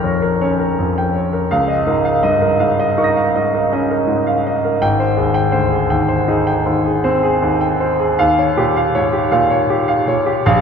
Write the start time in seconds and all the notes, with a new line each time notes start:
Already playing: A#1 D#2 F2 A#4 C#5 G5 C#6 F6 A#6
0.04 F2 C#5
0.22 A#4
0.41 C#4 C#5
0.59 A#4
0.78 F2
0.98 G5
1.15 C#5
1.33 A#4
1.51 C#2 F5
1.68 D#5
1.86 G#2 A#4
2.05 F5
2.23 G2 D#5
2.41 A#4
2.59 G#2 F5
2.80 D#5
2.98 D#4 A#4 C#6 D#6
3.04 A#6
3.17 F5
3.35 G#2 D#5
3.54 A#4
3.73 C#4 D#5
3.91 A#4
4.07 G#2
4.27 F5
4.47 D#5
4.65 A#4
4.82 G#1 G5
5.00 C5
5.17 D#2 G#4
5.34 G5
5.52 D2 C5
5.70 G#4
5.90 D#2 G5
6.08 C5
6.28 D#4 G#4
6.47 G5
6.66 D#2 C5
6.86 G#4
7.04 C4 C5
7.23 G#4
7.42 D#2
7.61 G5
7.80 C5
8.00 G#4
8.19 D#2 F5
8.39 C#5
8.57 A#2 G4
8.77 F5
8.95 G#2 C#5
9.13 G4
9.31 A#2 F5
9.50 C#5
9.70 G4
9.88 F5
10.07 A#2 C#5
10.26 G4
10.46 A#1 F5